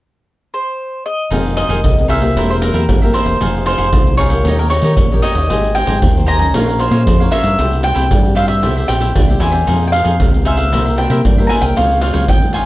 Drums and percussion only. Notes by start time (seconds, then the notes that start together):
1.31 pandeiro, shaker, surdo
1.46 pandeiro, shaker
1.57 pandeiro, shaker
1.69 pandeiro, shaker
1.84 pandeiro, shaker, surdo
1.99 pandeiro, shaker
2.10 pandeiro
2.22 pandeiro, shaker
2.37 pandeiro, shaker, surdo
2.51 pandeiro, shaker
2.62 pandeiro
2.74 pandeiro, shaker
2.89 pandeiro, shaker, surdo
3.03 pandeiro, shaker
3.14 pandeiro
3.26 pandeiro, shaker
3.41 pandeiro, shaker, surdo
3.55 pandeiro, shaker
3.66 pandeiro, shaker
3.78 pandeiro, shaker
3.93 pandeiro, shaker, surdo
4.07 pandeiro, shaker
4.18 pandeiro, surdo
4.30 pandeiro, shaker
4.45 pandeiro, shaker, surdo
4.59 pandeiro, shaker
4.70 pandeiro, shaker
4.82 pandeiro, shaker
4.97 pandeiro, shaker, surdo
5.11 pandeiro, shaker
5.23 pandeiro
5.35 pandeiro, shaker
5.50 pandeiro, shaker, surdo
5.64 pandeiro, shaker
5.75 pandeiro, shaker
5.87 pandeiro, shaker
6.02 pandeiro, shaker, surdo
6.17 pandeiro, shaker
6.27 pandeiro, shaker, surdo
6.39 pandeiro, shaker
6.54 pandeiro, shaker, surdo
6.69 pandeiro, shaker
6.79 pandeiro
6.91 pandeiro, shaker
7.07 pandeiro, shaker, surdo
7.21 pandeiro, shaker
7.32 pandeiro
7.43 pandeiro, shaker
7.59 pandeiro, shaker, surdo
7.72 pandeiro, shaker
7.83 pandeiro
7.96 pandeiro, shaker
8.11 pandeiro, shaker, surdo
8.25 pandeiro, shaker
8.36 pandeiro, shaker
8.48 pandeiro, shaker
8.63 pandeiro, shaker, surdo
8.77 pandeiro, shaker
8.89 pandeiro
9.01 pandeiro, shaker
9.15 pandeiro, shaker, surdo
9.30 pandeiro, shaker
9.40 pandeiro, shaker
9.52 pandeiro, shaker
9.67 pandeiro, shaker, surdo
9.81 pandeiro, shaker
9.93 pandeiro, shaker
10.04 pandeiro, shaker
10.20 pandeiro, shaker, surdo
10.34 pandeiro, shaker
10.45 pandeiro, shaker
10.57 pandeiro, shaker
10.73 pandeiro, shaker, surdo
10.87 pandeiro, shaker
10.98 pandeiro, shaker
11.10 pandeiro, shaker
11.25 pandeiro, shaker, surdo
11.39 pandeiro, shaker
11.50 pandeiro
11.62 pandeiro, shaker
11.77 pandeiro, shaker, surdo
11.91 pandeiro, shaker
12.01 pandeiro
12.13 pandeiro, shaker
12.28 pandeiro, shaker, surdo
12.42 pandeiro, shaker
12.53 pandeiro